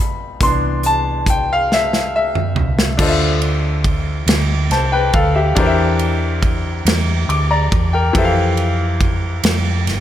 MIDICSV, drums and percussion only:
0, 0, Header, 1, 2, 480
1, 0, Start_track
1, 0, Key_signature, 0, "major"
1, 0, Tempo, 859968
1, 228, Time_signature, 6, 3, 24, 8
1, 5583, End_track
2, 0, Start_track
2, 0, Title_t, "Drums"
2, 227, Note_on_c, 9, 36, 109
2, 227, Note_on_c, 9, 42, 82
2, 283, Note_off_c, 9, 36, 0
2, 283, Note_off_c, 9, 42, 0
2, 465, Note_on_c, 9, 42, 47
2, 521, Note_off_c, 9, 42, 0
2, 706, Note_on_c, 9, 36, 88
2, 708, Note_on_c, 9, 42, 75
2, 762, Note_off_c, 9, 36, 0
2, 764, Note_off_c, 9, 42, 0
2, 959, Note_on_c, 9, 38, 55
2, 1015, Note_off_c, 9, 38, 0
2, 1079, Note_on_c, 9, 38, 58
2, 1135, Note_off_c, 9, 38, 0
2, 1314, Note_on_c, 9, 45, 62
2, 1370, Note_off_c, 9, 45, 0
2, 1429, Note_on_c, 9, 43, 96
2, 1485, Note_off_c, 9, 43, 0
2, 1555, Note_on_c, 9, 38, 93
2, 1611, Note_off_c, 9, 38, 0
2, 1667, Note_on_c, 9, 49, 111
2, 1668, Note_on_c, 9, 36, 127
2, 1723, Note_off_c, 9, 49, 0
2, 1724, Note_off_c, 9, 36, 0
2, 1907, Note_on_c, 9, 53, 42
2, 1962, Note_off_c, 9, 53, 0
2, 2146, Note_on_c, 9, 36, 92
2, 2147, Note_on_c, 9, 53, 49
2, 2202, Note_off_c, 9, 36, 0
2, 2202, Note_off_c, 9, 53, 0
2, 2387, Note_on_c, 9, 53, 82
2, 2394, Note_on_c, 9, 38, 108
2, 2443, Note_off_c, 9, 53, 0
2, 2450, Note_off_c, 9, 38, 0
2, 2628, Note_on_c, 9, 53, 45
2, 2633, Note_on_c, 9, 38, 34
2, 2684, Note_off_c, 9, 53, 0
2, 2689, Note_off_c, 9, 38, 0
2, 2866, Note_on_c, 9, 53, 39
2, 2867, Note_on_c, 9, 36, 108
2, 2921, Note_off_c, 9, 53, 0
2, 2923, Note_off_c, 9, 36, 0
2, 3105, Note_on_c, 9, 53, 67
2, 3107, Note_on_c, 9, 36, 125
2, 3161, Note_off_c, 9, 53, 0
2, 3163, Note_off_c, 9, 36, 0
2, 3345, Note_on_c, 9, 53, 41
2, 3401, Note_off_c, 9, 53, 0
2, 3586, Note_on_c, 9, 36, 90
2, 3587, Note_on_c, 9, 53, 46
2, 3642, Note_off_c, 9, 36, 0
2, 3643, Note_off_c, 9, 53, 0
2, 3832, Note_on_c, 9, 53, 79
2, 3839, Note_on_c, 9, 38, 125
2, 3888, Note_off_c, 9, 53, 0
2, 3895, Note_off_c, 9, 38, 0
2, 4073, Note_on_c, 9, 53, 47
2, 4129, Note_off_c, 9, 53, 0
2, 4309, Note_on_c, 9, 36, 106
2, 4309, Note_on_c, 9, 53, 39
2, 4365, Note_off_c, 9, 36, 0
2, 4365, Note_off_c, 9, 53, 0
2, 4548, Note_on_c, 9, 36, 119
2, 4550, Note_on_c, 9, 53, 69
2, 4604, Note_off_c, 9, 36, 0
2, 4606, Note_off_c, 9, 53, 0
2, 4785, Note_on_c, 9, 53, 42
2, 4841, Note_off_c, 9, 53, 0
2, 5027, Note_on_c, 9, 36, 92
2, 5028, Note_on_c, 9, 53, 44
2, 5082, Note_off_c, 9, 36, 0
2, 5084, Note_off_c, 9, 53, 0
2, 5267, Note_on_c, 9, 53, 76
2, 5274, Note_on_c, 9, 38, 110
2, 5322, Note_off_c, 9, 53, 0
2, 5330, Note_off_c, 9, 38, 0
2, 5510, Note_on_c, 9, 53, 48
2, 5515, Note_on_c, 9, 38, 35
2, 5566, Note_off_c, 9, 53, 0
2, 5571, Note_off_c, 9, 38, 0
2, 5583, End_track
0, 0, End_of_file